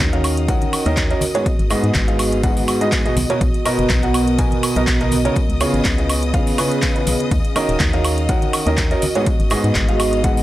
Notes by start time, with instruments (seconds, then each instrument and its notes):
Already playing: ambient pad C#4 G#4 C#5, string section D#5 D#6
0.00 fm bass D#2, ambient pad F#4, kick, closed hi-hat, tambourine, high conga
0.13 upright piano D#3 C#4 F#4 A#4 F5, ambient pad D#5, closed hi-hat, tambourine
0.24 ambient pad A#4, open hi-hat, tambourine, high woodblock
0.37 closed hi-hat, tambourine
0.48 upright piano D#3 C#4 F#4 A#4 F#5, kick, closed hi-hat, tambourine
0.61 closed hi-hat, tambourine, high conga
0.73 open hi-hat, tambourine, high woodblock
0.85 fm bass D#2, upright piano D#3 C#4 F#4 A#4 D#5, closed hi-hat, tambourine
0.97 kick, clap, closed hi-hat, tambourine
1.10 upright piano C#4 F#4 A#4 D#5, closed hi-hat, tambourine
1.21 ambient pad B3, open hi-hat, tambourine, high conga
1.34 upright piano G#2 B3 F#4 G#4 C#5, closed hi-hat, tambourine
1.41 ambient pad G#4
1.46 kick, closed hi-hat, tambourine
1.59 fm bass G#1, closed hi-hat, tambourine
1.70 upright piano G#2 B3 F#4 G#4 D#5, open hi-hat, tambourine, high woodblock
1.83 fm bass G#2, closed hi-hat, tambourine
1.94 fm bass G#1, kick, clap, closed hi-hat, tambourine, high conga
2.08 upright piano G#2 B3 F#4 G#4 F5, closed hi-hat, tambourine
2.19 open hi-hat, tambourine, high woodblock
2.32 closed hi-hat, tambourine
2.43 upright piano G#2 B3 F#4 G#4 F#5, kick, closed hi-hat, tambourine
2.57 open hi-hat, tambourine, high conga
2.68 open hi-hat, tambourine, high woodblock
2.81 upright piano G#2 B3 F#4 G#4 D#5, closed hi-hat, tambourine
2.92 kick, clap, closed hi-hat, tambourine
3.05 upright piano B2 B3 F#4 G#4 D#5, closed hi-hat, tambourine
3.17 fm bass B1, open hi-hat, tambourine, high conga
3.30 upright piano B2 B3 F#4 A#4 C#5, closed hi-hat, tambourine
3.41 fm bass B1, kick, closed hi-hat, tambourine
3.54 ambient pad A#4, closed hi-hat, tambourine
3.65 upright piano B2 B3 F#4 A#4 D#5, open hi-hat, tambourine, high woodblock
3.79 fm bass F#1, closed hi-hat, tambourine
3.89 fm bass B1, kick, clap, closed hi-hat, tambourine, high conga
4.02 upright piano B2 B3 F#4 A#4 F#5, closed hi-hat, tambourine
4.14 open hi-hat, tambourine, high woodblock
4.28 closed hi-hat, tambourine
4.38 upright piano B2 B3 F#4 A#4 G#5, kick, closed hi-hat, tambourine
4.51 closed hi-hat, tambourine, high conga
4.63 open hi-hat, tambourine, high woodblock
4.76 fm bass B1, upright piano B2 B3 F#4 A#4 D#5, closed hi-hat, tambourine
4.87 kick, clap, closed hi-hat, tambourine
5.00 upright piano B2 B3 F#4 A#4 D#5, closed hi-hat, tambourine
5.11 open hi-hat, tambourine, high conga
5.25 upright piano C#3 B3 F#4 A#4 C#5, closed hi-hat, tambourine
5.36 ambient pad C#4, kick, closed hi-hat, tambourine
5.49 fm bass C#2, closed hi-hat, tambourine
5.60 upright piano C#3 B3 F4 G#4 C#5, open hi-hat, tambourine, high woodblock
5.74 fm bass G#1, closed hi-hat, tambourine
5.84 fm bass C#2, ambient pad G#4, kick, clap, closed hi-hat, tambourine, high conga
5.98 upright piano C#3 B3 F4 G#4 D#5, closed hi-hat, tambourine
6.05 ambient pad F5
6.09 open hi-hat, tambourine, high woodblock
6.16 ambient pad B4
6.23 closed hi-hat, tambourine
6.34 upright piano C#3 B3 F4 G#4 F5, kick, closed hi-hat, tambourine
6.47 open hi-hat, tambourine, high conga
6.58 upright piano C#3 B3 F4 G#4 B4, open hi-hat, tambourine, high woodblock
6.71 closed hi-hat, tambourine
6.82 kick, clap, closed hi-hat, tambourine
6.96 upright piano C#3 B3 F4 G#4 B4, closed hi-hat, tambourine
7.07 fm bass B1, open hi-hat, tambourine, high conga
7.20 closed hi-hat, tambourine
7.31 fm bass D#2, kick, closed hi-hat, tambourine
7.44 closed hi-hat, tambourine
7.56 upright piano D#3 C#4 F#4 A#4 D#5, open hi-hat, tambourine, high woodblock
7.64 ambient pad F#4
7.69 fm bass D#1, closed hi-hat, tambourine
7.80 fm bass D#2, kick, clap, closed hi-hat, tambourine, high conga
7.93 upright piano D#3 C#4 F#4 A#4 F5, closed hi-hat, tambourine
8.04 open hi-hat, tambourine, high woodblock
8.09 ambient pad A#4 D#5
8.17 closed hi-hat, tambourine
8.29 upright piano D#3 C#4 F#4 A#4 F#5, kick, closed hi-hat, tambourine
8.42 closed hi-hat, tambourine, high conga
8.53 open hi-hat, tambourine, high woodblock
8.66 fm bass D#2, upright piano D#3 C#4 F#4 A#4 D#5, closed hi-hat, tambourine
8.77 kick, clap, closed hi-hat, tambourine
8.91 upright piano C#4 F#4 A#4 D#5, closed hi-hat, tambourine
9.02 ambient pad B3, open hi-hat, tambourine, high conga
9.15 upright piano G#2 B3 F#4 G#4 C#5, ambient pad G#4, closed hi-hat, tambourine
9.26 kick, closed hi-hat, tambourine
9.40 fm bass G#1, closed hi-hat, tambourine
9.50 upright piano G#2 B3 F#4 G#4 D#5, open hi-hat, tambourine, high woodblock
9.64 fm bass G#2, closed hi-hat, tambourine
9.75 fm bass G#1, kick, clap, closed hi-hat, tambourine, high conga
9.88 upright piano G#2 B3 F#4 G#4 F5, closed hi-hat, tambourine
10.00 open hi-hat, tambourine, high woodblock
10.12 closed hi-hat, tambourine
10.24 upright piano G#2 B3 F#4 G#4 F#5, kick, closed hi-hat, tambourine
10.37 open hi-hat, tambourine, high conga